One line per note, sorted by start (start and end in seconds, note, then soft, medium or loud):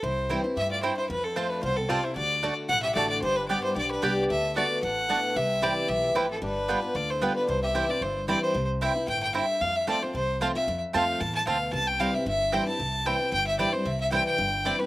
0.03 0.35 C2 medium
0.03 0.54 C3 medium
0.03 0.44 E4 medium
0.03 0.44 C5 medium
0.29 0.44 E3 medium
0.29 0.44 G3 medium
0.29 0.40 C4 medium
0.29 0.44 C4 medium
0.29 0.40 E4 medium
0.29 0.43 E4 medium
0.29 0.40 C5 medium
0.29 0.40 G5 medium
0.44 0.57 C4 medium
0.44 0.56 E4 medium
0.56 0.89 G2 medium
0.56 0.82 A2 medium
0.56 0.70 G4 medium
0.56 0.70 E5 loud
0.71 0.82 F4 medium
0.71 0.83 D5 medium
0.83 1.09 G2 medium
0.83 0.93 C4 medium
0.83 0.93 E4 medium
0.83 0.97 E4 medium
0.83 0.97 C5 medium
0.83 0.93 C5 medium
0.83 0.93 G5 medium
0.97 1.09 E4 medium
0.97 1.09 C5 medium
1.10 1.42 F2 medium
1.10 1.61 F2 medium
1.10 1.24 F4 medium
1.10 1.26 B4 medium
1.24 1.36 C4 medium
1.24 1.38 A4 medium
1.36 1.62 F3 medium
1.36 1.62 A3 medium
1.36 1.46 C4 medium
1.36 1.62 C4 medium
1.36 1.50 F4 medium
1.36 1.46 F4 medium
1.36 1.63 F4 loud
1.36 1.51 C5 medium
1.36 1.46 C5 medium
1.36 1.46 A5 medium
1.50 1.62 D4 medium
1.50 1.63 B4 medium
1.62 1.95 C2 medium
1.62 1.88 B2 medium
1.62 1.76 F4 medium
1.62 1.78 C5 loud
1.76 1.89 C4 medium
1.76 1.91 A4 medium
1.89 2.15 C3 medium
1.89 1.99 C4 medium
1.89 2.04 F4 medium
1.89 1.99 F4 medium
1.89 2.00 C5 loud
1.89 2.05 D5 loud
1.89 2.00 A5 medium
2.04 2.15 E4 medium
2.04 2.15 C5 medium
2.16 2.48 D2 medium
2.16 2.41 D3 medium
2.16 2.54 F#4 medium
2.16 2.54 D5 loud
2.43 2.68 D3 medium
2.43 2.53 A3 medium
2.43 2.69 A3 medium
2.43 2.69 D4 medium
2.43 2.53 F#4 medium
2.43 2.69 F#4 loud
2.43 2.53 D5 medium
2.43 2.53 A5 medium
2.69 2.92 B1 medium
2.69 3.20 A2 medium
2.69 2.83 A4 medium
2.69 2.82 F#5 loud
2.83 2.95 G4 medium
2.83 2.94 E5 loud
2.95 3.19 A1 medium
2.95 3.21 D3 medium
2.95 3.21 A3 medium
2.95 3.06 A3 medium
2.95 3.21 D4 medium
2.95 3.09 F#4 medium
2.95 3.06 F#4 medium
2.95 3.22 F#4 medium
2.95 3.09 D5 loud
2.95 3.06 D5 medium
2.95 3.06 A5 medium
3.10 3.22 F#4 medium
3.10 3.22 D5 medium
3.22 3.55 G1 medium
3.22 3.73 G2 medium
3.22 3.38 G4 medium
3.22 3.38 C5 loud
3.36 3.49 D4 medium
3.36 3.48 B4 medium
3.49 3.75 G3 medium
3.49 3.59 B3 medium
3.49 3.75 B3 medium
3.49 3.75 D4 medium
3.49 3.63 G4 medium
3.49 3.59 G4 medium
3.49 3.76 G4 loud
3.49 3.62 D5 loud
3.49 3.59 D5 medium
3.49 3.60 G5 medium
3.64 3.75 E4 medium
3.64 3.75 C5 medium
3.76 3.99 B1 medium
3.76 4.27 D3 medium
3.76 3.89 G4 medium
3.76 3.90 D5 loud
3.91 4.03 D4 medium
3.91 4.05 B4 medium
4.02 4.26 C2 medium
4.02 4.28 G3 medium
4.02 4.12 B3 medium
4.02 4.28 B3 medium
4.02 4.28 D4 loud
4.02 4.12 G4 medium
4.02 4.23 G4 medium
4.02 4.29 G4 medium
4.02 4.13 D5 medium
4.02 4.24 D5 medium
4.02 4.13 G5 medium
4.30 4.62 D2 medium
4.30 4.55 D3 medium
4.30 4.54 A4 medium
4.30 4.54 E5 loud
4.56 4.81 D3 medium
4.56 4.82 A3 medium
4.56 4.66 B3 medium
4.56 4.82 B3 medium
4.56 4.66 F#4 medium
4.56 4.81 F#4 medium
4.56 4.82 F#4 loud
4.56 4.66 D5 medium
4.56 4.81 D5 medium
4.56 4.66 A5 medium
4.83 5.15 A1 medium
4.83 5.34 A2 medium
4.83 5.33 A4 medium
4.83 5.38 F#5 loud
5.09 5.34 D3 medium
5.09 5.35 A3 medium
5.09 5.19 B3 medium
5.09 5.35 B3 medium
5.09 5.19 F#4 medium
5.09 5.35 F#4 medium
5.09 5.19 D5 medium
5.09 5.19 A5 medium
5.36 5.68 C2 medium
5.36 5.87 C3 medium
5.36 5.61 G4 medium
5.36 5.65 E5 loud
5.62 5.87 E3 medium
5.62 5.88 G3 medium
5.62 5.72 C4 medium
5.62 5.88 C4 medium
5.62 5.72 E4 medium
5.62 5.88 E4 loud
5.62 5.88 G4 medium
5.62 5.72 C5 medium
5.62 5.90 D5 loud
5.62 5.73 G5 loud
5.88 6.11 B1 medium
5.88 6.14 E3 medium
5.88 6.16 G4 medium
5.88 6.18 E5 loud
6.15 6.38 A1 medium
6.15 6.41 F3 medium
6.15 6.25 C4 medium
6.15 6.25 E4 medium
6.15 6.30 E4 medium
6.15 6.30 B4 medium
6.15 6.25 C5 medium
6.15 6.26 G5 medium
6.30 6.42 C4 medium
6.30 6.42 A4 medium
6.42 6.74 G1 medium
6.42 6.67 G3 medium
6.42 6.92 D4 medium
6.42 6.97 B4 loud
6.68 6.82 G3 medium
6.68 6.78 B3 medium
6.68 6.83 B3 medium
6.68 6.78 F4 medium
6.68 6.81 F4 loud
6.68 6.79 B4 medium
6.68 6.79 G5 medium
6.82 6.95 B3 soft
6.82 6.95 F4 medium
6.95 7.27 D2 medium
6.95 7.46 D3 medium
6.95 7.11 F4 medium
6.95 7.12 D5 loud
7.10 7.23 E4 medium
7.10 7.24 C5 medium
7.21 7.47 G3 medium
7.21 7.31 B3 medium
7.21 7.47 B3 medium
7.21 7.36 D4 medium
7.21 7.32 F4 medium
7.21 7.48 F4 loud
7.21 7.32 B4 medium
7.21 7.36 B4 medium
7.21 7.32 G5 medium
7.36 7.48 D4 medium
7.36 7.48 B4 medium
7.48 7.81 C2 medium
7.48 7.99 C3 medium
7.48 7.62 E4 medium
7.48 7.62 C5 medium
7.63 7.91 G4 medium
7.63 7.92 E5 medium
7.75 7.89 E3 medium
7.75 7.89 G3 medium
7.75 7.85 C4 medium
7.75 7.89 C4 medium
7.75 7.85 E4 medium
7.75 7.88 E4 medium
7.75 7.85 C5 medium
7.75 7.85 G5 medium
7.89 8.02 C4 soft
7.89 8.01 E4 medium
7.89 8.02 F4 medium
7.89 8.04 D5 medium
8.01 8.34 G1 medium
8.01 8.53 G2 medium
8.01 8.43 E4 medium
8.01 8.28 C5 medium
8.28 8.54 E3 medium
8.28 8.54 G3 medium
8.28 8.38 C4 medium
8.28 8.54 C4 medium
8.28 8.38 E4 medium
8.28 8.54 E4 loud
8.28 8.38 C5 medium
8.28 8.42 D5 medium
8.28 8.38 G5 medium
8.43 8.68 C5 medium
8.54 8.87 C2 medium
8.54 9.05 C3 medium
8.81 8.95 E3 medium
8.81 8.95 G3 medium
8.81 8.91 C4 medium
8.81 8.96 C4 medium
8.81 8.91 E4 medium
8.81 8.95 E4 medium
8.81 8.92 C5 medium
8.81 9.06 E5 medium
8.81 8.92 G5 loud
8.96 9.08 C4 medium
8.96 9.07 E4 medium
9.08 9.40 G1 medium
9.08 9.33 A2 medium
9.08 9.22 G5 loud
9.23 9.34 G5 loud
9.34 9.60 G2 medium
9.34 9.44 C4 medium
9.34 9.44 E4 medium
9.34 9.45 C5 medium
9.34 9.63 E5 loud
9.34 9.45 G5 medium
9.61 9.93 F2 medium
9.61 10.12 F2 medium
9.61 9.78 F5 loud
9.76 9.88 E5 loud
9.87 10.01 F3 medium
9.87 10.01 A3 medium
9.87 9.97 C4 medium
9.87 10.02 C4 loud
9.87 9.97 F4 medium
9.87 10.01 F4 loud
9.87 9.98 C5 medium
9.87 10.05 D5 medium
9.87 9.98 A5 loud
10.02 10.15 C4 medium
10.02 10.14 F4 medium
10.02 10.15 C5 medium
10.14 10.46 C2 medium
10.14 10.65 C3 medium
10.14 10.40 C5 loud
10.41 10.55 F3 medium
10.41 10.55 A3 medium
10.41 10.51 C4 medium
10.41 10.55 C4 medium
10.41 10.51 F4 medium
10.41 10.54 F4 medium
10.41 10.51 C5 medium
10.41 10.48 F5 loud
10.41 10.51 A5 medium
10.55 10.68 C4 soft
10.55 10.67 F4 medium
10.55 10.80 E5 medium
10.68 10.84 F2 medium
10.68 11.18 F2 medium
10.93 11.17 F2 medium
10.93 11.19 F3 medium
10.93 11.20 A3 medium
10.93 11.03 C4 medium
10.93 11.20 C4 loud
10.93 11.04 F4 medium
10.93 11.20 F4 loud
10.93 11.04 C5 medium
10.93 11.22 F5 loud
10.93 11.04 A5 loud
11.20 11.43 E2 medium
11.20 11.46 A2 medium
11.20 11.35 A5 loud
11.35 11.46 A5 loud
11.47 11.70 D2 medium
11.47 11.72 B2 medium
11.47 11.57 C4 medium
11.47 11.57 F4 medium
11.47 11.57 C5 medium
11.47 11.72 F5 loud
11.47 11.57 A5 medium
11.73 12.05 C2 loud
11.73 12.24 C3 medium
11.73 11.89 A5 loud
11.88 12.02 G5 loud
12.00 12.14 E3 medium
12.00 12.14 G3 loud
12.00 12.10 C4 medium
12.00 12.14 C4 medium
12.00 12.10 E4 medium
12.00 12.13 E4 loud
12.00 12.10 C5 medium
12.00 12.16 F5 loud
12.00 12.10 G5 medium
12.14 12.27 C4 medium
12.14 12.26 E4 medium
12.14 12.27 E5 loud
12.26 12.58 G1 medium
12.26 12.77 G2 medium
12.26 12.56 E5 loud
12.52 12.66 E3 medium
12.52 12.67 G3 medium
12.52 12.62 C4 medium
12.52 12.67 C4 medium
12.52 12.63 E4 medium
12.52 12.66 E4 medium
12.52 12.63 C5 medium
12.52 12.63 G5 medium
12.52 12.68 G5 loud
12.67 12.80 C4 soft
12.67 12.79 E4 medium
12.67 13.08 A5 loud
12.79 13.11 C2 medium
12.79 13.30 C3 medium
13.05 13.20 E3 medium
13.05 13.20 G3 medium
13.05 13.16 C4 medium
13.05 13.20 C4 medium
13.05 13.16 E4 medium
13.05 13.19 E4 medium
13.05 13.16 C5 medium
13.05 13.32 G5 loud
13.05 13.16 G5 medium
13.20 13.33 C4 medium
13.20 13.32 E4 medium
13.32 13.64 G1 medium
13.32 13.83 G2 medium
13.32 13.46 G5 loud
13.47 13.58 E5 medium
13.59 13.73 E3 medium
13.59 13.73 G3 medium
13.59 13.69 C4 medium
13.59 13.73 C4 loud
13.59 13.69 E4 medium
13.59 13.72 E4 loud
13.59 13.69 C5 medium
13.59 13.75 D5 medium
13.59 13.69 G5 medium
13.73 13.86 C4 medium
13.73 13.85 E4 medium
13.73 13.88 C5 medium
13.85 14.18 C2 medium
13.85 14.36 C3 medium
13.85 14.00 E5 loud
14.01 14.12 E5 medium
14.11 14.37 E3 medium
14.11 14.37 G3 medium
14.11 14.22 C4 medium
14.11 14.38 C4 medium
14.11 14.22 E4 medium
14.11 14.38 E4 loud
14.11 14.22 C5 loud
14.11 14.26 G5 loud
14.11 14.22 G5 medium
14.27 14.67 G5 loud
14.38 14.71 G1 medium
14.38 14.86 G2 medium
14.65 14.79 E3 medium
14.65 14.79 G3 medium
14.65 14.75 C4 medium
14.65 14.80 C4 medium
14.65 14.75 E4 medium
14.65 14.78 E4 loud
14.65 14.75 C5 loud
14.65 14.81 D5 loud
14.65 14.75 G5 medium
14.79 14.86 C4 medium
14.79 14.86 E4 medium
14.79 14.86 B4 medium